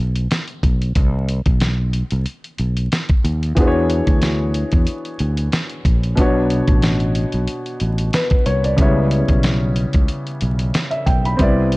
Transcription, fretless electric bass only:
0.00 0.26 B1 medium
0.63 0.91 B1 medium
0.96 1.39 C2 loud
1.46 2.02 B1 medium
2.12 2.24 C2 medium
2.59 2.87 B1 medium
3.24 3.52 D#2 medium
3.57 4.00 E2 loud
4.07 4.63 D2 medium
4.73 4.85 E2 medium
5.20 5.48 D2 medium
5.85 6.13 A#1 medium
6.18 6.61 B1 loud
6.68 7.24 A1 medium
7.34 7.46 B1 medium
7.81 8.09 A1 medium
8.46 8.74 C2 medium
8.79 9.22 C#2 loud
9.29 9.84 B1 loud
9.94 10.07 C#2 medium
10.42 10.70 B1 medium
11.07 11.35 B1 medium
11.39 11.77 C2 loud

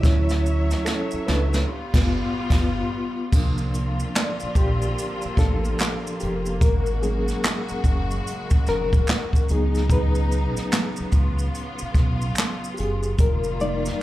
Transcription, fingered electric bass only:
0.05 0.73 D2 loud
1.14 muted fingered electric bass stroke soft
1.29 1.63 C#2 medium
1.95 2.21 G1 loud
2.52 2.81 G1 medium
3.34 4.02 C2 loud
4.43 muted fingered electric bass stroke soft
4.56 4.91 A#1 medium
5.26 muted fingered electric bass stroke soft
5.38 5.73 A1 medium
6.23 6.62 F1 medium
6.62 7.31 G#1 medium
7.72 muted fingered electric bass stroke soft
7.85 8.19 F#1 medium
8.52 muted fingered electric bass stroke soft
8.69 9.02 F1 medium
9.51 10.53 C#2 medium
11.00 muted fingered electric bass stroke soft
11.14 11.48 C#2 medium
11.82 muted fingered electric bass stroke soft
11.96 12.30 B1 medium
12.80 13.13 F#1 medium
13.20 13.88 F1 loud

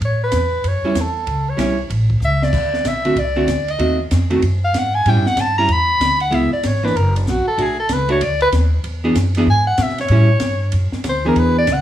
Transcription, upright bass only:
0.01 0.32 A2 medium
0.32 0.63 E2 medium
0.64 0.82 F#2 medium
0.82 muted upright bass stroke soft
0.95 1.26 E2 medium
1.26 1.57 C#2 medium
1.58 1.89 B1 medium
1.90 2.20 A1 medium
2.20 2.52 C#2 medium
2.52 2.84 D2 medium
2.84 3.15 B1 medium
3.15 3.47 C2 medium
3.47 3.78 D2 medium
3.79 4.10 D#2 medium
4.11 4.42 F2 medium
4.42 4.73 F#2 medium
4.74 5.05 G#2 medium
5.05 5.17 A2 medium
5.17 5.27 G2 medium
5.27 5.36 E2 medium
5.37 5.68 G2 medium
5.68 5.99 E2 medium
6.00 6.31 D2 medium
6.31 6.50 C#2 medium
6.63 6.94 G#1 medium
6.95 7.26 F#1 loud
7.27 7.45 A#1 medium
7.47 muted upright bass stroke soft
7.58 7.88 B1 medium
7.89 8.20 C#2 medium
8.21 8.52 D2 medium
8.52 8.83 D#2 medium
8.84 9.15 E2 medium
9.15 9.46 F#2 medium
9.47 9.77 G#2 medium
9.78 10.09 B2 loud
10.09 10.40 A2 medium
10.41 10.72 G2 medium
10.73 10.92 F#2 medium
10.93 muted upright bass stroke soft
11.04 11.35 D2 medium
11.36 11.66 E2 medium
11.67 11.81 C#2 medium

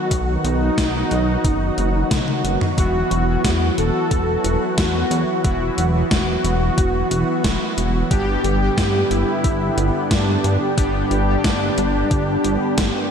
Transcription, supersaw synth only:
0.00 0.31 F#4 loud
0.44 2.64 D#4 loud
2.78 3.64 F#4 loud
3.78 4.64 A4 loud
4.78 5.64 F#4 loud
5.77 7.98 F#4 loud
8.11 8.98 G4 loud
9.11 9.98 E4 loud
10.11 10.98 D4 loud
11.11 13.11 D4 loud

